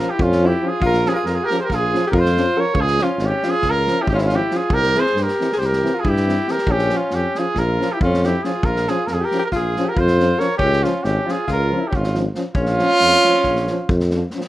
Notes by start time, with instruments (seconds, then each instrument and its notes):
Already playing: alto saxophone F4, trumpet A#4
0.00 trombone F3, euphonium C#4
0.10 trumpet G4
0.14 alto saxophone E4
0.19 tuba F2, trumpet F4, kick
0.23 alto saxophone C#4
0.32 snare
0.41 trombone F3, euphonium C#4
0.46 alto saxophone E4, trumpet G4
0.62 trombone F3, euphonium C#4, alto saxophone F4
0.68 trumpet G#4
0.80 tuba A#1, alto saxophone F4, kick
0.85 trumpet A#4
0.93 snare
1.05 trombone F3, euphonium C#4, alto saxophone F4 G4, trumpet G#4, snare
1.13 alto saxophone F4, trumpet G#4 A#4
1.25 tuba F2, alto saxophone F4, trumpet A#4, snare
1.33 alto saxophone F4, trumpet G#4
1.44 alto saxophone G4, trumpet A#4
1.50 trombone F3, euphonium C#4, snare
1.58 alto saxophone G#4, trumpet C5
1.63 alto saxophone G4, trumpet A#4
1.70 tuba A#1, alto saxophone F4, kick, snare
1.75 trumpet G#4
1.93 trombone F3, euphonium C#4, snare
2.07 alto saxophone G4, trumpet A#4
2.12 tuba F2, alto saxophone F4, kick
2.20 trumpet C5
2.25 snare
2.37 trombone F3, euphonium C#4, snare
2.56 trombone F3, euphonium C#4, alto saxophone A#4
2.60 trumpet C#5
2.75 tuba C#2, alto saxophone F4, kick
2.81 trumpet G#4
2.87 snare
2.98 trombone F3, alto saxophone C#4, euphonium C#4, snare
3.03 trumpet F4
3.18 tuba G#1, alto saxophone C#4, snare
3.26 trumpet G4
3.43 trombone F3, euphonium C#4, alto saxophone F4, snare
3.50 trumpet G#4
3.62 tuba C#2, kick, snare
3.66 alto saxophone F4, trumpet A#4
3.87 trombone F3, snare
3.92 euphonium C#4
4.00 alto saxophone C#4 E4, trumpet G4
4.05 tuba G#1, alto saxophone E4, trumpet G4, kick
4.13 alto saxophone C4 C#4, trumpet E4 F4
4.18 alto saxophone C#4, snare
4.25 trumpet F4, snare
4.30 trombone F3, euphonium C#4
4.35 alto saxophone E4, trumpet G4
4.51 trombone F3, euphonium C#4, alto saxophone F4, snare
4.56 trumpet G#4
4.70 tuba C2, alto saxophone G4, trumpet A#4, kick
4.83 snare
4.94 trombone E3, euphonium C4, alto saxophone G#4, snare
5.00 trumpet C5
5.06 snare
5.15 tuba G2, alto saxophone G4, snare
5.23 trumpet A#4
5.28 snare
5.40 trombone E3, euphonium C4, snare
5.52 alto saxophone G#4, snare
5.57 tuba C2, alto saxophone G4, trumpet C5, snare
5.65 trumpet A#4
5.73 snare
5.82 trombone E3, euphonium C4, snare
5.94 alto saxophone F4
5.99 trumpet G#4
6.04 tuba G2, alto saxophone E4, kick
6.09 trumpet G4
6.16 snare
6.26 trombone E3, euphonium C4, snare
6.47 trombone E3, euphonium C4, alto saxophone G4, snare
6.51 trumpet A#4
6.58 snare
6.66 tuba A#1, kick
6.70 alto saxophone C#4, trumpet G4
6.78 snare
6.89 trombone F3, euphonium C#4, alto saxophone C#4, snare
6.97 trumpet F4
7.10 tuba F2, snare
7.15 alto saxophone C#4, trumpet G4
7.35 trombone F3, euphonium C#4, trumpet G#4, snare
7.39 alto saxophone F4
7.55 tuba A#1, alto saxophone F4, trumpet A#4, kick, snare
7.80 trombone F3, euphonium C#4, snare
7.92 alto saxophone E4, trumpet G4
8.01 tuba F2, alto saxophone C#4, trumpet F4, kick
8.14 snare
8.23 trombone F3, euphonium C#4, trumpet G4, snare
8.28 alto saxophone E4
8.43 trombone F3, euphonium C#4, alto saxophone F4, trumpet G#4, snare
8.63 tuba A#1, alto saxophone F4, trumpet A#4, kick
8.76 snare
8.87 trombone F3, euphonium C#4, alto saxophone F4, trumpet G#4, snare
9.07 tuba F2, alto saxophone F4, trumpet A#4, snare
9.13 alto saxophone F4, trumpet G#4
9.21 alto saxophone G4, trumpet A#4
9.31 trombone F3, euphonium C#4, snare
9.39 alto saxophone G4
9.45 trumpet A#4
9.52 tuba A#1, alto saxophone F4, trumpet G#4, kick, snare
9.76 trombone F3, euphonium C#4, snare
9.85 alto saxophone G4, trumpet A#4
9.94 alto saxophone F4, kick
9.99 tuba F2, trumpet C5
10.07 snare
10.19 trombone F3, euphonium C#4, snare
10.39 trombone F3, euphonium C#4, alto saxophone A#4, trumpet C#5, snare
10.57 tuba C#2, alto saxophone C#4, trumpet G4, kick
10.72 snare
10.83 trombone F3, alto saxophone C#4, euphonium C#4, trumpet F4, snare
11.02 tuba G#1, alto saxophone C#4, trumpet G4, snare
11.26 trombone F3, euphonium C#4, alto saxophone F4, snare
11.31 trumpet G#4
11.48 tuba C#2, alto saxophone F4, kick, snare
11.52 trumpet A#4
11.71 trombone F3, euphonium C#4
11.80 alto saxophone E4
11.87 alto saxophone C#4, trumpet G4
11.93 tuba G#1, trumpet F4, kick
12.04 snare
12.14 trombone F3, euphonium C#4, snare
12.35 trombone F3, euphonium C#4, snare
12.55 tuba A#1, alto saxophone C#4, trumpet F4, kick
12.65 snare
12.78 trombone F3, euphonium C#4, snare
12.89 snare
13.00 tuba F2, snare
13.12 snare
13.24 trombone F3, euphonium C#4, snare
13.33 snare
13.43 tuba A#1, kick, snare
13.56 snare
13.67 trombone F3, euphonium C#4, snare
13.89 tuba F2, kick
14.00 snare
14.10 euphonium C#4, snare
14.15 trombone F3
14.30 euphonium C#4, snare
14.35 trombone F3
14.41 snare